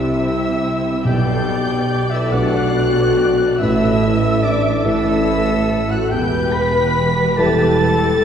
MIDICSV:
0, 0, Header, 1, 11, 480
1, 0, Start_track
1, 0, Tempo, 846262
1, 599, Time_signature, 6, 3, 24, 8
1, 4676, End_track
2, 0, Start_track
2, 0, Title_t, "Violin section"
2, 0, Program_c, 0, 48
2, 0, Note_on_c, 0, 88, 109
2, 602, Note_off_c, 0, 88, 0
2, 604, Note_on_c, 0, 91, 121
2, 1202, Note_off_c, 0, 91, 0
2, 1209, Note_on_c, 0, 88, 99
2, 1322, Note_off_c, 0, 88, 0
2, 1322, Note_on_c, 0, 90, 126
2, 2037, Note_off_c, 0, 90, 0
2, 2044, Note_on_c, 0, 88, 127
2, 2507, Note_off_c, 0, 88, 0
2, 2522, Note_on_c, 0, 86, 109
2, 2756, Note_off_c, 0, 86, 0
2, 2758, Note_on_c, 0, 88, 127
2, 3351, Note_off_c, 0, 88, 0
2, 3360, Note_on_c, 0, 90, 112
2, 3472, Note_off_c, 0, 90, 0
2, 3473, Note_on_c, 0, 91, 127
2, 3702, Note_on_c, 0, 95, 126
2, 3703, Note_off_c, 0, 91, 0
2, 4185, Note_off_c, 0, 95, 0
2, 4191, Note_on_c, 0, 93, 127
2, 4676, Note_off_c, 0, 93, 0
2, 4676, End_track
3, 0, Start_track
3, 0, Title_t, "Flute"
3, 0, Program_c, 1, 73
3, 0, Note_on_c, 1, 76, 90
3, 585, Note_off_c, 1, 76, 0
3, 599, Note_on_c, 1, 79, 99
3, 1190, Note_on_c, 1, 76, 90
3, 1198, Note_off_c, 1, 79, 0
3, 1315, Note_on_c, 1, 78, 96
3, 1323, Note_off_c, 1, 76, 0
3, 1879, Note_off_c, 1, 78, 0
3, 2024, Note_on_c, 1, 76, 106
3, 2507, Note_on_c, 1, 74, 91
3, 2516, Note_off_c, 1, 76, 0
3, 2746, Note_on_c, 1, 76, 108
3, 2755, Note_off_c, 1, 74, 0
3, 3345, Note_on_c, 1, 78, 91
3, 3353, Note_off_c, 1, 76, 0
3, 3460, Note_on_c, 1, 79, 105
3, 3469, Note_off_c, 1, 78, 0
3, 3698, Note_on_c, 1, 83, 107
3, 3706, Note_off_c, 1, 79, 0
3, 4183, Note_off_c, 1, 83, 0
3, 4190, Note_on_c, 1, 81, 114
3, 4676, Note_off_c, 1, 81, 0
3, 4676, End_track
4, 0, Start_track
4, 0, Title_t, "Oboe"
4, 0, Program_c, 2, 68
4, 0, Note_on_c, 2, 76, 94
4, 598, Note_off_c, 2, 76, 0
4, 604, Note_on_c, 2, 79, 90
4, 1197, Note_on_c, 2, 76, 85
4, 1205, Note_off_c, 2, 79, 0
4, 1318, Note_on_c, 2, 78, 93
4, 1327, Note_off_c, 2, 76, 0
4, 1881, Note_off_c, 2, 78, 0
4, 2037, Note_on_c, 2, 76, 101
4, 2522, Note_on_c, 2, 74, 93
4, 2530, Note_off_c, 2, 76, 0
4, 2748, Note_on_c, 2, 76, 108
4, 2757, Note_off_c, 2, 74, 0
4, 3354, Note_on_c, 2, 78, 96
4, 3362, Note_off_c, 2, 76, 0
4, 3463, Note_off_c, 2, 78, 0
4, 3467, Note_on_c, 2, 79, 106
4, 3698, Note_on_c, 2, 83, 120
4, 3707, Note_off_c, 2, 79, 0
4, 4183, Note_on_c, 2, 81, 115
4, 4192, Note_off_c, 2, 83, 0
4, 4676, Note_off_c, 2, 81, 0
4, 4676, End_track
5, 0, Start_track
5, 0, Title_t, "Viola section"
5, 0, Program_c, 3, 48
5, 0, Note_on_c, 3, 76, 91
5, 597, Note_on_c, 3, 74, 108
5, 599, Note_off_c, 3, 76, 0
5, 2034, Note_off_c, 3, 74, 0
5, 2041, Note_on_c, 3, 76, 121
5, 2740, Note_off_c, 3, 76, 0
5, 2748, Note_on_c, 3, 69, 104
5, 3465, Note_off_c, 3, 69, 0
5, 3465, Note_on_c, 3, 71, 114
5, 4183, Note_on_c, 3, 67, 99
5, 4185, Note_off_c, 3, 71, 0
5, 4422, Note_off_c, 3, 67, 0
5, 4431, Note_on_c, 3, 69, 95
5, 4672, Note_off_c, 3, 69, 0
5, 4676, End_track
6, 0, Start_track
6, 0, Title_t, "Violin section"
6, 0, Program_c, 4, 48
6, 0, Note_on_c, 4, 67, 62
6, 0, Note_on_c, 4, 76, 59
6, 102, Note_on_c, 4, 72, 67
6, 107, Note_on_c, 4, 64, 62
6, 109, Note_off_c, 4, 67, 0
6, 110, Note_off_c, 4, 76, 0
6, 221, Note_off_c, 4, 72, 0
6, 223, Note_off_c, 4, 64, 0
6, 232, Note_on_c, 4, 67, 63
6, 236, Note_on_c, 4, 76, 65
6, 355, Note_off_c, 4, 67, 0
6, 355, Note_on_c, 4, 64, 66
6, 357, Note_off_c, 4, 76, 0
6, 360, Note_on_c, 4, 72, 65
6, 475, Note_on_c, 4, 76, 57
6, 477, Note_off_c, 4, 64, 0
6, 477, Note_on_c, 4, 67, 59
6, 479, Note_off_c, 4, 72, 0
6, 582, Note_off_c, 4, 67, 0
6, 589, Note_on_c, 4, 67, 74
6, 591, Note_on_c, 4, 74, 72
6, 597, Note_off_c, 4, 76, 0
6, 706, Note_off_c, 4, 67, 0
6, 707, Note_off_c, 4, 74, 0
6, 721, Note_on_c, 4, 71, 64
6, 726, Note_on_c, 4, 69, 66
6, 841, Note_off_c, 4, 71, 0
6, 843, Note_on_c, 4, 74, 67
6, 844, Note_off_c, 4, 69, 0
6, 845, Note_on_c, 4, 67, 62
6, 962, Note_off_c, 4, 74, 0
6, 963, Note_off_c, 4, 67, 0
6, 965, Note_on_c, 4, 69, 67
6, 967, Note_on_c, 4, 71, 69
6, 1082, Note_off_c, 4, 69, 0
6, 1082, Note_on_c, 4, 74, 69
6, 1083, Note_off_c, 4, 71, 0
6, 1085, Note_on_c, 4, 67, 67
6, 1192, Note_off_c, 4, 74, 0
6, 1194, Note_off_c, 4, 67, 0
6, 1212, Note_on_c, 4, 71, 65
6, 1217, Note_on_c, 4, 69, 64
6, 1324, Note_off_c, 4, 71, 0
6, 1325, Note_on_c, 4, 74, 72
6, 1327, Note_off_c, 4, 69, 0
6, 1329, Note_on_c, 4, 67, 68
6, 1440, Note_off_c, 4, 74, 0
6, 1442, Note_off_c, 4, 67, 0
6, 1442, Note_on_c, 4, 71, 68
6, 1446, Note_on_c, 4, 69, 67
6, 1559, Note_off_c, 4, 71, 0
6, 1561, Note_off_c, 4, 69, 0
6, 1572, Note_on_c, 4, 67, 67
6, 1573, Note_on_c, 4, 74, 68
6, 1676, Note_off_c, 4, 67, 0
6, 1676, Note_off_c, 4, 74, 0
6, 1690, Note_on_c, 4, 69, 66
6, 1691, Note_on_c, 4, 71, 69
6, 1800, Note_on_c, 4, 74, 73
6, 1803, Note_off_c, 4, 69, 0
6, 1803, Note_off_c, 4, 71, 0
6, 1803, Note_on_c, 4, 67, 66
6, 1917, Note_off_c, 4, 74, 0
6, 1919, Note_off_c, 4, 67, 0
6, 1927, Note_on_c, 4, 71, 66
6, 1931, Note_on_c, 4, 69, 67
6, 2041, Note_off_c, 4, 71, 0
6, 2043, Note_off_c, 4, 69, 0
6, 2052, Note_on_c, 4, 71, 73
6, 2054, Note_off_c, 4, 71, 0
6, 2054, Note_on_c, 4, 71, 76
6, 2156, Note_off_c, 4, 71, 0
6, 2162, Note_on_c, 4, 69, 67
6, 2164, Note_off_c, 4, 69, 0
6, 2164, Note_on_c, 4, 69, 74
6, 2278, Note_off_c, 4, 69, 0
6, 2291, Note_on_c, 4, 71, 70
6, 2294, Note_off_c, 4, 71, 0
6, 2294, Note_on_c, 4, 71, 71
6, 2403, Note_off_c, 4, 71, 0
6, 2409, Note_on_c, 4, 69, 73
6, 2410, Note_off_c, 4, 69, 0
6, 2410, Note_on_c, 4, 69, 78
6, 2521, Note_off_c, 4, 69, 0
6, 2523, Note_on_c, 4, 71, 68
6, 2526, Note_off_c, 4, 71, 0
6, 2526, Note_on_c, 4, 71, 65
6, 2631, Note_off_c, 4, 71, 0
6, 2648, Note_on_c, 4, 69, 68
6, 2651, Note_off_c, 4, 69, 0
6, 2651, Note_on_c, 4, 69, 66
6, 2760, Note_off_c, 4, 69, 0
6, 2766, Note_on_c, 4, 71, 72
6, 2767, Note_off_c, 4, 71, 0
6, 2767, Note_on_c, 4, 71, 74
6, 2878, Note_off_c, 4, 71, 0
6, 2890, Note_on_c, 4, 69, 75
6, 2999, Note_off_c, 4, 69, 0
6, 3011, Note_on_c, 4, 71, 77
6, 3112, Note_off_c, 4, 71, 0
6, 3127, Note_on_c, 4, 69, 76
6, 3129, Note_off_c, 4, 69, 0
6, 3129, Note_on_c, 4, 69, 71
6, 3238, Note_off_c, 4, 69, 0
6, 3242, Note_on_c, 4, 71, 77
6, 3244, Note_off_c, 4, 71, 0
6, 3244, Note_on_c, 4, 71, 76
6, 3355, Note_off_c, 4, 71, 0
6, 3365, Note_on_c, 4, 69, 65
6, 3368, Note_off_c, 4, 69, 0
6, 3368, Note_on_c, 4, 69, 72
6, 3476, Note_on_c, 4, 71, 88
6, 3477, Note_off_c, 4, 69, 0
6, 3480, Note_on_c, 4, 67, 85
6, 4676, Note_off_c, 4, 67, 0
6, 4676, Note_off_c, 4, 71, 0
6, 4676, End_track
7, 0, Start_track
7, 0, Title_t, "French horn section"
7, 0, Program_c, 5, 60
7, 0, Note_on_c, 5, 64, 96
7, 586, Note_off_c, 5, 64, 0
7, 605, Note_on_c, 5, 67, 102
7, 1190, Note_off_c, 5, 67, 0
7, 1209, Note_on_c, 5, 64, 90
7, 1323, Note_off_c, 5, 64, 0
7, 1330, Note_on_c, 5, 66, 111
7, 2041, Note_off_c, 5, 66, 0
7, 2049, Note_on_c, 5, 64, 111
7, 2519, Note_off_c, 5, 64, 0
7, 2525, Note_on_c, 5, 62, 93
7, 2752, Note_on_c, 5, 64, 108
7, 2757, Note_off_c, 5, 62, 0
7, 3258, Note_off_c, 5, 64, 0
7, 3354, Note_on_c, 5, 66, 93
7, 3468, Note_off_c, 5, 66, 0
7, 3468, Note_on_c, 5, 67, 110
7, 3705, Note_off_c, 5, 67, 0
7, 3711, Note_on_c, 5, 71, 106
7, 4188, Note_on_c, 5, 69, 127
7, 4190, Note_off_c, 5, 71, 0
7, 4676, Note_off_c, 5, 69, 0
7, 4676, End_track
8, 0, Start_track
8, 0, Title_t, "Grand piano"
8, 0, Program_c, 6, 0
8, 0, Control_c, 6, 64, 127
8, 0, Note_on_c, 6, 36, 64
8, 0, Note_on_c, 6, 60, 55
8, 0, Note_on_c, 6, 64, 54
8, 0, Note_on_c, 6, 67, 58
8, 575, Note_off_c, 6, 60, 0
8, 576, Note_off_c, 6, 64, 0
8, 578, Note_off_c, 6, 67, 0
8, 595, Note_on_c, 6, 35, 70
8, 610, Control_c, 6, 64, 0
8, 611, Note_off_c, 6, 36, 0
8, 692, Control_c, 6, 64, 127
8, 1294, Note_off_c, 6, 35, 0
8, 1320, Note_on_c, 6, 57, 66
8, 1320, Note_on_c, 6, 62, 60
8, 1322, Note_on_c, 6, 71, 67
8, 2013, Note_off_c, 6, 57, 0
8, 2013, Note_off_c, 6, 62, 0
8, 2014, Note_off_c, 6, 71, 0
8, 2038, Note_on_c, 6, 33, 83
8, 2046, Control_c, 6, 64, 0
8, 2129, Control_c, 6, 64, 127
8, 2731, Note_off_c, 6, 33, 0
8, 2752, Note_on_c, 6, 64, 69
8, 2755, Note_on_c, 6, 57, 67
8, 2758, Note_on_c, 6, 71, 72
8, 3444, Note_off_c, 6, 64, 0
8, 3446, Note_off_c, 6, 57, 0
8, 3447, Note_off_c, 6, 71, 0
8, 3465, Note_on_c, 6, 40, 75
8, 3476, Control_c, 6, 64, 0
8, 3564, Control_c, 6, 64, 127
8, 4164, Note_off_c, 6, 40, 0
8, 4190, Note_on_c, 6, 55, 70
8, 4191, Note_on_c, 6, 64, 71
8, 4194, Note_on_c, 6, 71, 76
8, 4676, Note_off_c, 6, 55, 0
8, 4676, Note_off_c, 6, 64, 0
8, 4676, Note_off_c, 6, 71, 0
8, 4676, End_track
9, 0, Start_track
9, 0, Title_t, "Timpani"
9, 0, Program_c, 7, 47
9, 594, Note_on_c, 7, 47, 88
9, 1292, Note_off_c, 7, 47, 0
9, 4676, End_track
10, 0, Start_track
10, 0, Title_t, "Cello section"
10, 0, Program_c, 8, 48
10, 0, Note_on_c, 8, 48, 86
10, 509, Note_off_c, 8, 48, 0
10, 594, Note_on_c, 8, 47, 85
10, 1231, Note_off_c, 8, 47, 0
10, 1317, Note_on_c, 8, 47, 92
10, 1950, Note_off_c, 8, 47, 0
10, 2036, Note_on_c, 8, 45, 103
10, 2667, Note_off_c, 8, 45, 0
10, 2752, Note_on_c, 8, 45, 98
10, 3383, Note_off_c, 8, 45, 0
10, 3468, Note_on_c, 8, 40, 93
10, 4676, Note_off_c, 8, 40, 0
10, 4676, End_track
11, 0, Start_track
11, 0, Title_t, "Double bass section"
11, 0, Program_c, 10, 48
11, 0, Note_on_c, 10, 36, 80
11, 510, Note_off_c, 10, 36, 0
11, 596, Note_on_c, 10, 35, 90
11, 1232, Note_off_c, 10, 35, 0
11, 1319, Note_on_c, 10, 35, 96
11, 1951, Note_off_c, 10, 35, 0
11, 2032, Note_on_c, 10, 33, 93
11, 2665, Note_off_c, 10, 33, 0
11, 2748, Note_on_c, 10, 33, 99
11, 3381, Note_off_c, 10, 33, 0
11, 3461, Note_on_c, 10, 28, 88
11, 4676, Note_off_c, 10, 28, 0
11, 4676, End_track
0, 0, End_of_file